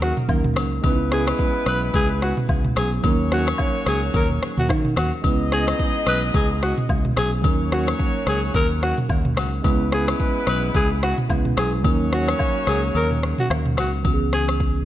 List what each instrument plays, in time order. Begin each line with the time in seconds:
Already playing: fingered electric bass D#2, tine electric piano F#3 A#3 C#4 D#4 A#4, horn section F#3 A#3 D#4 A#4
0.01 alto saxophone F#4, cross-stick, shaker
0.17 mid tom, shaker
0.28 fingered electric bass D#2, tine electric piano F#3 A#3 C#4 D#4 A#4, kick, low woodblock, shaker
0.44 mid tom
0.56 fingered electric bass C#2, cross-stick, open hi-hat, high agogo, shaker
0.72 shaker
0.81 fingered electric bass C#2, tine electric piano G#3 B3 C#4 D#4, horn section G#3 B3 E4 B4, kick, high agogo, shaker
0.86 tine electric piano B4
0.92 tine electric piano E4
1.12 alto saxophone G#4, cross-stick, shaker
1.27 cross-stick, high agogo, shaker
1.39 kick, shaker
1.66 fingered electric bass B1, alto saxophone B4, cross-stick, high agogo, shaker
1.82 shaker
1.94 fingered electric bass C#2, alto saxophone G#4, kick, high agogo, shaker
2.21 alto saxophone F#4, cross-stick, shaker
2.37 mid tom, shaker
2.49 fingered electric bass C#2, kick, low woodblock, shaker
2.64 mid tom
2.76 fingered electric bass B1, alto saxophone G#4, cross-stick, open hi-hat, high agogo, shaker
2.92 shaker
3.02 fingered electric bass D#2, tine electric piano F#3 A#3 C#4 D#4, horn section A#3 C#4 F#4 C#5, kick, high agogo, shaker
3.07 tine electric piano A#4
3.32 alto saxophone F#4, cross-stick, shaker
3.47 cross-stick, high agogo, shaker
3.58 kick, low woodblock, shaker
3.86 fingered electric bass C#2, alto saxophone G#4, cross-stick, open hi-hat, high agogo, shaker
4.02 shaker
4.14 fingered electric bass D#2, alto saxophone A#4, kick, high agogo, shaker
4.30 mid tom
4.42 cross-stick, shaker
4.57 fingered electric bass D#2, alto saxophone F#4, mid tom, shaker
4.69 fingered electric bass D#3, kick, cross-stick, low woodblock, shaker
4.85 mid tom
4.96 fingered electric bass D#2, alto saxophone F#4, cross-stick, open hi-hat, high agogo, shaker
5.12 shaker
5.22 fingered electric bass C#2, tine electric piano G#3 B3 C#4 E4, horn section B3 D#4 G#4 D#5, kick, high agogo, shaker
5.27 tine electric piano B4
5.52 alto saxophone G#4, cross-stick, shaker
5.67 cross-stick, high agogo, shaker
5.79 kick, shaker
6.06 fingered electric bass B1, alto saxophone B4, cross-stick, high agogo, shaker
6.22 shaker
6.34 fingered electric bass C#2, alto saxophone G#4, kick, high agogo, shaker
6.62 alto saxophone F#4, cross-stick, shaker
6.77 mid tom, shaker
6.89 fingered electric bass C#2, kick, low woodblock, shaker
7.05 mid tom
7.17 fingered electric bass B1, alto saxophone G#4, cross-stick, open hi-hat, high agogo, shaker
7.32 shaker
7.42 fingered electric bass D#2, tine electric piano F#3 A#3 C#4 D#4, horn section A#3 C#4 F#4 C#5, kick, high agogo, shaker
7.47 tine electric piano A#4
7.72 alto saxophone F#4, cross-stick, shaker
7.87 cross-stick, high agogo, shaker
7.99 kick, shaker
8.27 fingered electric bass C#2, alto saxophone G#4, cross-stick, high agogo, shaker
8.42 shaker
8.54 fingered electric bass D#2, alto saxophone A#4, kick, high agogo, shaker
8.82 alto saxophone F#4, cross-stick, shaker
8.98 mid tom, shaker
9.09 fingered electric bass D#2, kick, low woodblock, shaker
9.25 mid tom
9.37 fingered electric bass C#2, cross-stick, open hi-hat, high agogo, shaker
9.52 shaker
9.62 fingered electric bass C#2, tine electric piano G#3 B3 C#4 E4, horn section G#3 B3 E4 B4, kick, high agogo, shaker
9.67 tine electric piano B4
9.92 alto saxophone G#4, cross-stick, shaker
10.08 cross-stick, high agogo, shaker
10.20 kick, shaker
10.47 fingered electric bass B1, alto saxophone B4, cross-stick, high agogo, shaker
10.62 shaker
10.74 fingered electric bass C#2, alto saxophone G#4, kick, high agogo, shaker
11.02 alto saxophone F#4, cross-stick, shaker
11.18 mid tom, shaker
11.28 fingered electric bass C#2, tine electric piano G#3 B3 C#4 E4 B4, kick, low woodblock, shaker
11.45 mid tom
11.57 fingered electric bass B1, alto saxophone G#4, cross-stick, open hi-hat, high agogo, shaker
11.73 shaker
11.82 fingered electric bass D#2, tine electric piano E3 A#3 C#4 D#4, horn section A#3 C#4 F#4 C#5, kick, high agogo, shaker
11.87 tine electric piano F#3 A#4
12.13 alto saxophone F#4, cross-stick, shaker
12.28 cross-stick, high agogo, shaker
12.39 kick, low woodblock, shaker
12.67 fingered electric bass C#2, alto saxophone G#4, cross-stick, open hi-hat, high agogo, shaker
12.83 shaker
12.95 fingered electric bass D#2, alto saxophone A#4, high agogo, shaker
13.11 mid tom
13.22 cross-stick, shaker
13.38 alto saxophone F#4, mid tom, shaker
13.50 fingered electric bass D#2, cross-stick, low woodblock, shaker
13.66 mid tom
13.77 fingered electric bass C#2, alto saxophone F#4, cross-stick, open hi-hat, high agogo, shaker
13.93 shaker
14.02 fingered electric bass C#2, tine electric piano E3 B3 C#4, kick, high agogo, shaker
14.07 tine electric piano F#4
14.14 tine electric piano G#4
14.33 alto saxophone G#4, cross-stick, shaker
14.48 cross-stick, high agogo, shaker
14.60 kick, shaker